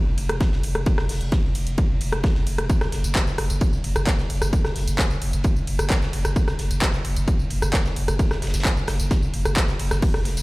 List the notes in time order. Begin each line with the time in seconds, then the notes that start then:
0.07 F1
0.18 F1, open hi-hat, ride
0.29 F1, cross-stick, closed hi-hat
0.41 kick, snare, closed hi-hat, ride
0.52 F1, snare
0.63 F1, open hi-hat, ride
0.75 F1, cross-stick, closed hi-hat
0.86 kick, closed hi-hat, ride
0.98 F1, cross-stick, snare
1.09 F1, snare, open hi-hat
1.21 F1, closed hi-hat
1.32 kick, snare, closed hi-hat, ride
1.44 F1
1.55 F1, open hi-hat, ride
1.67 F1, closed hi-hat
1.78 kick, closed hi-hat, ride
1.90 F1
2.01 F1, open hi-hat, ride
2.12 F1, cross-stick, closed hi-hat, ride
2.23 kick, snare, closed hi-hat, ride
2.35 F1, snare
2.46 F1, open hi-hat, ride
2.58 F1, cross-stick, closed hi-hat
2.70 kick, closed hi-hat, ride, tambourine
2.81 F#1, cross-stick, snare, tambourine
2.92 F#1, snare, open hi-hat, ride
3.04 F#1, closed hi-hat, ride, tambourine
3.15 kick, snare, clap, closed hi-hat, ride, tambourine
3.27 F#1, snare, tambourine
3.38 F#1, cross-stick, open hi-hat, ride
3.50 F#1, closed hi-hat, ride, tambourine
3.61 kick, closed hi-hat, ride, tambourine
3.73 F#1, tambourine
3.84 F#1, open hi-hat, ride
3.96 F#1, cross-stick, closed hi-hat, tambourine
4.07 kick, snare, clap, closed hi-hat, ride, tambourine
4.19 F#1, snare, tambourine
4.30 F#1, open hi-hat, ride
4.42 F#1, cross-stick, closed hi-hat, tambourine
4.53 kick, closed hi-hat, ride, tambourine
4.65 F#1, cross-stick, snare, tambourine
4.75 F#1, snare, open hi-hat
4.87 F#1, closed hi-hat, tambourine
4.98 kick, snare, clap, closed hi-hat, ride, tambourine
5.10 F#1, tambourine
5.22 F#1, open hi-hat, ride
5.33 F#1, closed hi-hat, tambourine
5.44 kick, closed hi-hat, ride, tambourine
5.56 F#1, tambourine
5.67 F#1, open hi-hat, ride
5.79 F#1, cross-stick, closed hi-hat, ride, tambourine
5.90 kick, snare, clap, closed hi-hat, ride, tambourine
6.02 F#1, snare, tambourine
6.13 F#1, open hi-hat, ride
6.25 F#1, cross-stick, closed hi-hat, tambourine
6.36 kick, closed hi-hat, ride, tambourine
6.47 F#1, cross-stick, snare, tambourine
6.59 F#1, snare, open hi-hat, ride
6.71 F#1, closed hi-hat, ride, tambourine
6.82 kick, snare, clap, closed hi-hat, tambourine
6.93 F#1, snare, tambourine
7.05 F#1, open hi-hat, ride
7.16 F#1, closed hi-hat, ride, tambourine
7.27 kick, closed hi-hat, ride, tambourine
7.39 F#1, tambourine
7.50 F#1, open hi-hat, ride
7.62 F#1, cross-stick, closed hi-hat, tambourine
7.73 kick, snare, clap, closed hi-hat, ride, tambourine
7.85 F#1, snare, tambourine
7.96 F#1, open hi-hat, ride
8.08 F#1, cross-stick, closed hi-hat, tambourine
8.19 kick, closed hi-hat, ride, tambourine
8.31 F#1, cross-stick, snare, tambourine
8.42 F#1, snare, open hi-hat, ride
8.47 snare, ride
8.54 F#1, snare, closed hi-hat, ride, tambourine
8.60 snare, ride
8.65 kick, snare, clap, closed hi-hat, ride, tambourine
8.77 F#1, tambourine
8.87 F#1, cross-stick, snare, open hi-hat, ride
9.00 F#1, closed hi-hat, tambourine
9.11 kick, snare, closed hi-hat, ride, tambourine
9.23 F#1, tambourine
9.33 F#1, open hi-hat, ride
9.45 F#1, cross-stick, closed hi-hat, ride, tambourine
9.56 kick, snare, clap, closed hi-hat, ride, tambourine
9.68 F#1, snare, tambourine
9.79 F#1, open hi-hat, ride
9.91 F#1, cross-stick, snare, closed hi-hat, tambourine
10.02 kick, closed hi-hat, crash, ride, tambourine
10.14 F1, cross-stick, snare, tambourine
10.25 F1, snare, open hi-hat, ride
10.37 F1, closed hi-hat, ride, tambourine